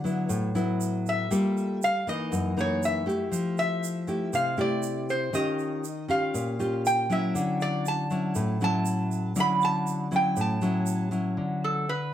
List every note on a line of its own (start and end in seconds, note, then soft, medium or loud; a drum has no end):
0.00 0.27 D3 medium
0.00 0.51 F#3 medium
0.00 0.27 F#5 medium
0.04 0.51 B3 medium
0.04 0.51 E4 medium
0.04 shaker soft
0.29 1.28 A2 medium
0.29 shaker medium
0.55 1.26 F#3 medium
0.55 1.26 B3 medium
0.55 1.27 E4 medium
0.55 shaker soft
0.81 shaker medium
1.06 1.79 E5 medium
1.06 shaker soft
1.31 2.07 G3 medium
1.31 1.81 A#3 medium
1.31 1.81 F4 medium
1.31 1.81 A4 medium
1.31 shaker medium
1.57 shaker soft
1.82 2.07 F5 loud
1.82 shaker medium
2.07 2.53 E3 medium
2.07 2.53 A#3 medium
2.07 2.53 D#4 medium
2.07 2.54 D#5 medium
2.07 shaker soft
2.32 3.30 F#2 medium
2.32 shaker medium
2.57 3.03 E3 medium
2.57 3.03 A#3 medium
2.57 3.03 D#4 medium
2.57 2.83 C#5 medium
2.57 shaker soft
2.83 3.55 E5 medium
2.83 shaker medium
3.06 4.03 A3 medium
3.06 4.03 E4 medium
3.06 4.03 G4 medium
3.06 shaker soft
3.32 4.30 F3 medium
3.32 shaker medium
3.58 4.30 E5 medium
3.58 shaker soft
3.84 shaker medium
4.07 4.54 A3 medium
4.07 4.54 E4 medium
4.07 4.54 G4 medium
4.07 shaker soft
4.33 5.31 C3 medium
4.33 4.58 F5 medium
4.33 shaker medium
4.58 5.29 A3 medium
4.58 5.29 E4 medium
4.58 5.30 G4 medium
4.58 5.06 D5 medium
4.58 shaker soft
4.83 shaker medium
5.09 5.34 C5 medium
5.09 shaker soft
5.33 6.31 D#3 medium
5.33 5.83 C#4 medium
5.33 5.83 F4 medium
5.33 5.84 G4 medium
5.33 6.05 D#5 medium
5.33 shaker medium
5.59 shaker soft
5.84 shaker medium
6.08 6.55 C#4 medium
6.08 6.55 F4 medium
6.08 6.55 G4 medium
6.08 6.81 F5 medium
6.08 shaker soft
6.34 7.32 A#2 medium
6.34 shaker medium
6.59 7.06 C#4 medium
6.59 7.06 F4 medium
6.59 7.06 G4 medium
6.59 shaker soft
6.86 7.10 G5 loud
6.86 shaker medium
7.10 8.06 F#3 medium
7.10 8.06 C#4 medium
7.10 8.07 E4 medium
7.10 7.58 E5 medium
7.10 shaker soft
7.35 8.33 D3 medium
7.35 shaker medium
7.61 7.85 D5 loud
7.61 shaker soft
7.86 8.58 A5 medium
7.86 shaker medium
8.10 8.57 F#3 medium
8.10 8.57 C#4 medium
8.10 8.57 E4 medium
8.10 shaker soft
8.35 9.33 A2 medium
8.35 shaker medium
8.61 9.32 F#3 medium
8.61 9.32 C#4 medium
8.61 9.33 E4 medium
8.61 9.34 A5 loud
8.61 shaker soft
8.86 shaker medium
9.11 shaker soft
9.36 10.34 D3 medium
9.36 10.07 F#3 medium
9.36 10.07 C#4 medium
9.36 10.08 E4 medium
9.36 shaker medium
9.40 9.63 B5 loud
9.61 10.10 A5 loud
9.61 shaker soft
9.87 shaker medium
10.11 10.58 F#3 medium
10.11 10.58 C#4 medium
10.11 10.58 E4 medium
10.11 shaker soft
10.16 10.38 G5 loud
10.37 11.35 A2 medium
10.37 shaker medium
10.41 11.10 A5 medium
10.62 11.08 F#3 medium
10.62 11.08 C#4 medium
10.62 11.09 E4 medium
10.62 shaker soft
10.86 shaker medium
11.11 11.85 F#3 medium
11.11 11.85 C#4 medium
11.11 11.86 E4 medium
11.11 shaker soft
11.37 12.14 D3 medium
11.64 11.89 A4 medium
11.89 12.14 B4 medium